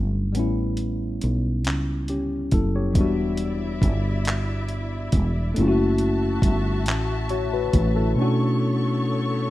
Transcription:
0.00 0.36 G1 medium
0.00 0.30 F#3 medium
0.00 0.31 A3 medium
0.00 0.32 C#4 medium
0.00 0.33 D4 medium
0.32 2.91 G3 medium
0.32 2.92 B3 medium
0.32 closed hi-hat medium
0.36 1.19 A1 medium
0.36 2.06 C#4 medium
0.36 2.08 E4 medium
0.77 closed hi-hat soft
1.21 1.67 B1 medium
1.21 closed hi-hat medium
1.65 2.49 C#2 medium
1.65 clap loud
1.65 closed hi-hat medium
2.08 2.51 C#4 medium
2.08 2.50 G4 medium
2.08 closed hi-hat soft
2.51 2.96 F#1 medium
2.51 2.74 E4 medium
2.51 2.74 A4 medium
2.51 kick medium
2.51 closed hi-hat medium
2.76 3.16 G4 medium
2.76 3.16 C#5 medium
2.93 3.79 E1 medium
2.93 3.01 F#3 medium
2.93 5.53 B3 medium
2.93 5.54 E4 medium
2.93 5.53 D5 medium
2.93 5.54 E5 medium
2.93 kick medium
2.93 closed hi-hat medium
2.98 5.55 G3 medium
2.98 5.54 D4 medium
2.98 5.55 F#4 medium
3.37 closed hi-hat medium
3.82 5.09 G1 medium
3.82 kick medium
3.82 closed hi-hat medium
4.25 clap loud
4.25 closed hi-hat medium
4.69 closed hi-hat soft
5.12 5.53 E1 medium
5.12 kick medium
5.12 closed hi-hat medium
5.54 6.40 F#1 medium
5.54 8.12 A3 medium
5.54 8.14 C#4 medium
5.54 8.14 F#4 medium
5.54 8.15 E5 medium
5.54 8.14 A5 medium
5.54 closed hi-hat medium
5.59 7.28 E4 medium
5.59 5.65 F4 medium
5.68 7.30 F#4 medium
5.98 closed hi-hat medium
6.42 6.88 G1 medium
6.42 kick medium
6.42 closed hi-hat medium
6.86 7.70 A1 medium
6.86 clap loud
6.86 closed hi-hat medium
7.29 7.51 F#4 medium
7.29 7.51 C#5 medium
7.29 closed hi-hat soft
7.53 7.94 F#4 medium
7.53 7.94 B4 medium
7.73 8.14 A1 medium
7.73 kick medium
7.73 closed hi-hat medium
7.96 8.38 E4 medium
7.96 8.37 A4 medium
8.15 9.50 B2 medium
8.15 9.50 A3 medium
8.15 9.50 B3 medium
8.15 9.50 C#4 medium
8.15 9.50 A4 medium
8.15 9.50 C#5 medium
8.15 9.50 C#6 medium
8.20 9.50 D4 medium
8.20 9.50 F#4 medium

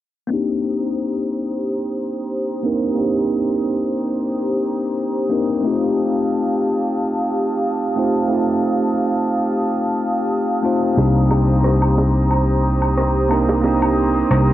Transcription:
0.27 2.59 A#3 medium
0.27 2.60 C4 medium
0.27 2.60 D4 medium
0.27 10.93 G4 medium
0.27 5.60 C5 medium
0.27 5.60 A#5 medium
0.27 10.93 D#6 medium
0.32 2.61 D#4 medium
0.32 2.62 G4 medium
1.31 shaker medium
1.98 shaker medium
2.63 2.93 A#3 medium
2.63 2.93 C4 medium
2.63 2.94 D4 medium
2.63 2.94 D#4 medium
2.63 2.95 A#4 medium
2.94 5.26 A#3 medium
2.94 5.26 C4 medium
2.94 5.27 D4 medium
2.99 5.28 D#4 medium
2.99 5.29 G4 medium
3.31 shaker medium
3.98 shaker medium
4.65 shaker medium
5.29 5.60 A#3 medium
5.29 5.60 C4 medium
5.29 5.60 D4 medium
5.29 5.61 D#4 medium
5.29 5.61 A#4 medium
5.29 shaker medium
5.49 shaker soft
5.61 7.92 A3 medium
5.61 7.93 C4 medium
5.61 7.94 D#4 medium
5.61 10.94 F5 medium
5.61 10.94 A5 medium
5.61 shaker soft
5.66 7.95 F4 medium
5.66 7.95 G4 medium
5.98 shaker medium
6.16 shaker soft
6.31 shaker soft
6.65 shaker medium
6.83 shaker soft
6.98 shaker soft
7.31 shaker medium
7.49 shaker soft
7.65 shaker soft
7.96 8.26 A3 medium
7.96 8.27 C4 medium
7.96 8.27 D#4 medium
7.96 8.28 F4 medium
7.96 8.28 C5 medium
7.96 shaker medium
8.16 shaker soft
8.28 10.59 A3 medium
8.28 10.60 C4 medium
8.28 10.61 D#4 medium
8.28 shaker soft
8.33 10.61 F4 medium
8.33 10.62 G4 medium
8.65 shaker medium
8.82 shaker soft
8.98 shaker soft
9.31 shaker medium
9.49 shaker soft
9.65 shaker soft
9.98 shaker medium
10.16 shaker soft
10.31 shaker soft
10.62 10.93 A3 medium
10.62 10.93 C4 medium
10.62 10.94 D#4 medium
10.62 10.94 F4 medium
10.62 10.94 C5 medium
10.62 shaker medium
10.83 shaker soft
10.94 14.21 C2 medium
10.94 13.26 A#3 medium
10.94 13.26 C4 medium
10.94 13.27 D4 medium
10.94 14.53 G4 medium
10.94 14.53 C5 medium
10.94 14.53 A#5 medium
10.94 14.53 D#6 medium
10.94 high bongo medium
10.94 shaker soft
10.99 13.28 D#4 medium
10.99 13.29 G4 medium
11.31 high bongo medium
11.31 low woodblock medium
11.31 shaker medium
11.49 shaker soft
11.64 cross-stick medium
11.82 low woodblock medium
11.98 high bongo medium
11.98 shaker medium
12.16 shaker soft
12.31 low woodblock medium
12.31 shaker soft
12.65 shaker medium
12.82 low woodblock medium
12.82 shaker soft
12.97 cross-stick medium
13.29 13.60 A#3 medium
13.29 13.60 C4 medium
13.29 13.60 D4 medium
13.29 13.61 D#4 medium
13.29 13.61 A#4 medium
13.29 low woodblock medium
13.29 shaker medium
13.49 high bongo medium
13.49 shaker soft
13.61 14.53 A#3 medium
13.61 14.53 C4 medium
13.61 14.53 D4 medium
13.61 high bongo medium
13.61 shaker soft
13.66 14.53 D#4 medium
13.66 14.53 G4 medium
13.82 low woodblock medium
13.98 shaker medium
14.16 shaker soft
14.30 14.53 C2 medium
14.30 cross-stick medium
14.30 low woodblock medium
14.30 shaker soft

